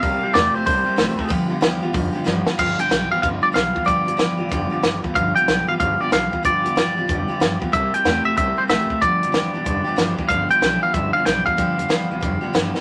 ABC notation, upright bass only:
X:1
M:4/4
L:1/8
Q:"Swing" 1/4=187
K:Gmix
V:1 name="Upright bass" clef=bass
C,, z E,, z C,, z A,,, z | G,,, F,, E,, B,,, F,,, z G,,, z | G,,, z B,,, z G,,, z B,,, z | D,, F,, E,, B,,, F,,, z G,,, z |
G,,, z B,,, z G,,, z B,,, z | D,, F,, E,, B,,, F,,, z G,,, z | C,, z E,, z C,, z A,,, z | G,,, F,, E,, B,,, F,,, z G,,, z |
G,,, z B,,, z G,,, z B,,, z | z F,, z B,,, F,,, z G,,, z |]